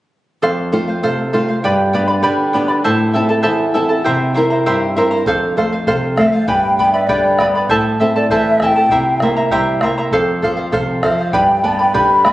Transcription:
0.42 F2 A4 C5 F5
0.72 A3 C4 F4 A4 C5 F5
0.88 C5 F5
1.03 C3 A4 C5 F5
1.33 A3 C4 F4 A4 C5 F5
1.48 C5 F5
1.64 G2 G4 B4 D5 G5 B5
1.93 B3 D4 G4 B4 D5 G5 B5
2.08 B4 D5 B5
2.23 D3 G4 B4 D5 G5 B5
2.53 B3 D4 G4 B4 D5 G5 B5
2.68 B4 D5 B5
2.84 A2 E4 A4 C5 E5 A5
3.13 C4 E4 A4 E5 A5
3.29 E4 A4 A5
3.43 E2 E4 A4 C5 E5 A5
3.74 C4 E4 A4 E5 A5
3.89 E4 A4 A5
4.04 C3 E4 G4 C5 E5 A#5
4.34 C4 E4 A#4 C5 E5 A#5
4.50 E4 C5 A#5
4.66 G2 E4 G4 C5 E5 A#5
4.96 C4 E4 A#4 C5 E5 A#5
5.11 E4 C5 A#5
5.26 F2 A4 C5 F5, bombo low
5.57 A3 A4 C5 F5, bombo low
5.73 C5 F5
5.87 C3 A4 C5 F5, bombo low
6.17 A3 A4 C5 E5 F5, bombo rim, bombo low
6.32 C5 F5
6.48 G2 G4 B4 D5 G5 G#5 B5, bombo low
6.78 B3 B4 D5 G5 B5, bombo low
6.93 B4 D5 E5 B5
7.07 D3 G4 B4 D5 G5 B5, bombo low
7.39 B3 B4 D5 G5 B5, bombo rim, bombo low
7.55 B4 D5 B5
7.69 A2 E4 A4 C5 E5 A5, bombo low
8.00 C4 E4 A4 E5 A5
8.15 E4 A4 D5 A5
8.29 E3 E4 A4 C5 E5 A5, bombo low
8.60 C4 E4 A4 E5 G#5 A5, bombo rim, bombo low
8.65 G5
8.76 E4 A4 A5
8.89 C3 E4 G4 C5 E5 A#5, bombo low
9.20 A#3 E4 C5 E5 A#5, bombo rim, bombo low
9.36 E4 E5 A#5
9.51 G3 E4 G4 C5 E5 A#5, bombo low
9.81 A#3 E4 C5 E5 A#5, bombo rim, bombo low
9.98 E4 E5 A#5
10.11 F2 A4 C5 F5, bombo low
10.42 F3 A4 C5 F5, bombo low
10.57 C5 F5
10.72 C3 A4 C5 F5, bombo low
11.03 F3 A4 C5 E5 F5, bombo rim, bombo low
11.18 C5 F5
11.33 G2 G4 B4 D5 G5 B5, bombo low
11.64 B3 B4 D5 G5 A5 B5, bombo low
11.79 B4 D5 G5 B5
11.94 D3 G4 B4 D5 G5 B5, bombo low
12.25 B3 B4 D5 G5 B5, bombo rim, bombo low

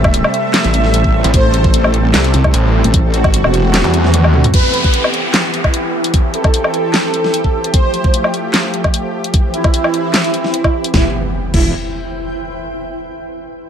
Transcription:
Already playing: A1 C3 G3 A3 C4 A4 E5 A5
0.04 kick, low woodblock
0.14 closed hi-hat
0.24 low woodblock
0.34 closed hi-hat
0.54 snare, clap, closed hi-hat
0.64 A1, closed hi-hat
0.74 closed hi-hat
0.84 snare
0.94 closed hi-hat
1.04 kick
1.24 A1, closed hi-hat
1.34 A1 C5, kick, closed hi-hat
1.54 closed hi-hat
1.64 kick
1.74 closed hi-hat
1.84 low woodblock
1.94 closed hi-hat
2.14 C2, snare, clap, closed hi-hat
2.24 closed hi-hat
2.34 C2, closed hi-hat
2.44 kick, low woodblock
2.54 A1, closed hi-hat
2.84 A1, closed hi-hat
2.94 kick, closed hi-hat
3.14 F#4, closed hi-hat
3.24 G#1, kick, low woodblock
3.34 closed hi-hat
3.44 E1, low woodblock
3.54 closed hi-hat
3.74 snare, clap, closed hi-hat
3.84 E2, closed hi-hat
3.94 closed hi-hat
4.04 snare
4.14 closed hi-hat, high tom
4.24 D#2, high tom, low woodblock
4.34 mid tom
4.44 closed hi-hat, mid tom
4.54 E3 B3 E4 G4 B4, kick, closed hi-hat, downlifter
4.74 closed hi-hat
4.80 G5
4.84 kick
4.94 closed hi-hat
5.04 low woodblock
5.14 closed hi-hat
5.34 snare, clap, closed hi-hat
5.54 closed hi-hat
5.64 kick, low woodblock
5.74 closed hi-hat
6.04 closed hi-hat
6.14 C4 G4, kick, closed hi-hat
6.32 A4 C5, closed hi-hat
6.44 kick, low woodblock
6.54 closed hi-hat
6.64 low woodblock
6.74 closed hi-hat
6.94 snare, clap, closed hi-hat
7.14 closed hi-hat
7.24 snare
7.34 closed hi-hat
7.44 kick
7.64 closed hi-hat
7.74 F3 A3 F4 C5, kick, closed hi-hat
7.94 closed hi-hat
8.04 kick
8.14 closed hi-hat
8.22 A4, low woodblock
8.34 closed hi-hat
8.54 snare, clap, closed hi-hat
8.74 closed hi-hat
8.84 kick, low woodblock
8.94 closed hi-hat
9.24 closed hi-hat
9.34 E3 C4 E4, kick, closed hi-hat
9.54 E4 C5, closed hi-hat
9.64 kick, low woodblock
9.74 closed hi-hat
9.84 low woodblock
9.94 closed hi-hat
10.14 snare, clap, closed hi-hat
10.24 closed hi-hat
10.34 closed hi-hat
10.44 snare
10.54 closed hi-hat
10.64 kick, low woodblock
10.84 closed hi-hat
10.94 E1 E3 B3 E4 G4, kick, snare, impact
11.00 B4
11.06 G5
11.54 E1 E4, kick, crash

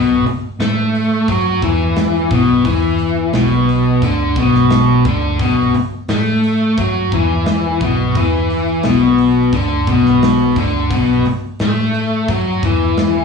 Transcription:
Already playing: B1 B2
0.25 muted fingered electric bass stroke, muted overdriven electric guitar stroke, open hi-hat
0.59 A2 A3, snare, open hi-hat
0.95 open hi-hat
1.28 F#2 F#3, kick, open hi-hat
1.62 E2 E3, kick, open hi-hat
1.96 snare, open hi-hat
2.31 B1 B2, kick, open hi-hat
2.65 E2 E3, kick, open hi-hat
2.99 open hi-hat
3.33 B1 B2, snare, open hi-hat
3.69 open hi-hat
4.02 D2 D3, kick, open hi-hat
4.36 B1 B2, kick, open hi-hat
4.55 snare
4.70 snare, open hi-hat
5.05 D2 D3, kick, open hi-hat
5.39 B1 B2, kick, open hi-hat
5.74 muted fingered electric bass stroke, muted overdriven electric guitar stroke, open hi-hat
6.08 A2 A3, snare, open hi-hat
6.44 open hi-hat
6.77 F#2 F#3, kick, open hi-hat
7.12 E2 E3, kick, open hi-hat
7.46 snare, open hi-hat
7.81 B1 B2, kick, open hi-hat
8.15 E2 E3, kick, open hi-hat
8.50 open hi-hat
8.83 B1 B2, snare, open hi-hat
9.19 open hi-hat
9.52 D2 D3, kick, open hi-hat
9.87 B1 B2, kick, open hi-hat
10.06 snare
10.22 snare, open hi-hat
10.56 D2 D3, kick, open hi-hat
10.90 B1 B2, kick, open hi-hat
11.25 muted overdriven electric guitar stroke, open hi-hat
11.59 A2 A3, snare, open hi-hat
11.94 open hi-hat
12.28 F#2 F#3, kick, open hi-hat
12.63 E2 E3, kick, open hi-hat
12.97 snare, open hi-hat

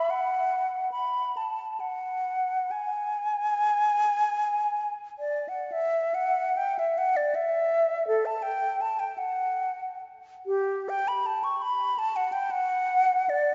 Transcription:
Already playing: E5
0.10 F#5
0.92 B5
1.37 A5
1.80 F#5
2.71 G#5
5.19 D5
5.49 F#5
5.72 E5
6.14 F#5
6.57 G5
6.79 E5
6.98 F#5
7.17 D5
7.35 E5
8.08 A4
8.26 A5
8.42 G5
8.81 A5
8.99 G5
9.18 F#5
10.46 G4
10.89 G5
11.08 B5
11.26 A5
11.44 C#6
11.62 B5
11.99 A5
12.16 F#5
12.32 G5
12.51 F#5
13.29 D5

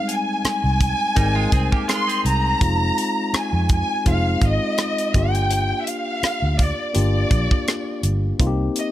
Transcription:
Already playing: G3 G#3 C4 D#4
0.09 G#5, closed hi-hat
0.45 G#5, muted fingered electric bass stroke, cross-stick, closed hi-hat
0.64 C2
0.81 kick, closed hi-hat
1.15 G#1 G3 G#3 C4 D#4 A#4, kick, closed hi-hat
1.35 G#3 F4
1.52 C2 C4 G#4, kick, closed hi-hat
1.72 A#3 G4, kick
1.88 G#3 F4, cross-stick, closed hi-hat
1.92 C6
2.08 C4 G#4, closed hi-hat
2.25 C2 A#5, closed hi-hat
2.60 F1 G#3 C4 D#4 F4, kick, closed hi-hat
2.98 closed hi-hat
3.33 G#5, muted fingered electric bass stroke, cross-stick, closed hi-hat
3.53 F2
3.69 kick, closed hi-hat
3.73 G#5
4.05 F1 G#3 C4 D#4 F4 F5, kick, closed hi-hat
4.41 G#1 D#5, kick, closed hi-hat
4.78 cross-stick, closed hi-hat
4.98 closed hi-hat
5.14 G1 A#3 D4 F4 G4 G5, kick, closed hi-hat
5.35 closed hi-hat
5.51 closed hi-hat
5.81 E5
5.87 F5, closed hi-hat
6.23 muted fingered electric bass stroke, cross-stick, closed hi-hat
6.42 D2
6.59 D5, kick, closed hi-hat
6.94 G1 A#3 D4 F4 G4 D5, closed hi-hat
7.31 A#1, kick, closed hi-hat
7.51 kick
7.68 cross-stick, closed hi-hat
8.03 G1, closed hi-hat
8.39 C2 A#3 C4 D#4 F4, kick, closed hi-hat
8.47 G4
8.76 D#5, closed hi-hat

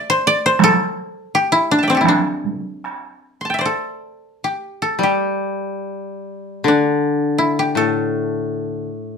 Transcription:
Already playing: A4 D5 E5
0.10 C5
0.27 D5
0.46 C5
0.60 A4, taiko rim, taiko high
1.35 G4
1.52 E4
1.71 D4
1.79 A5
1.83 E5 G5
1.88 C4 C5 D5
1.95 G4 A4
2.01 E4
2.05 D4, taiko rim, taiko high
2.45 taiko high
2.84 taiko rim
3.41 C6
3.45 A5
3.50 G5
3.54 E5
3.59 C5 D5
3.65 A4
4.44 G4
4.82 A4
4.99 G3
5.03 G4
6.64 D3
6.68 D4
7.38 E4
7.59 G4
7.75 A2 A4

